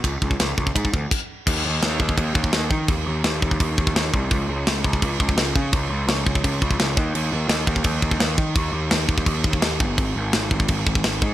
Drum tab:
CC |------------x---|x---x---x---x---|x---x---x---x---|x---x---x---x---|
RD |b---b---b-------|----------------|----------------|----------------|
SD |----o-----------|----o-------o---|----o-------o---|----o-------o---|
BD |o-oo--ooooo-o---|o-----ooo-oo--o-|o-----ooo-oo--o-|o-----ooo-oo--o-|

CC |x---x---x---x---|x---x---x---x---|x---x---x---x---|x---x---x---x---|
RD |----------------|----------------|----------------|----------------|
SD |----o-------o---|----o-------o---|----o-------o---|----o-------o---|
BD |o-----ooo-oo--o-|------ooo-oo--o-|o-----ooo-oo--o-|o-----ooo-oo--o-|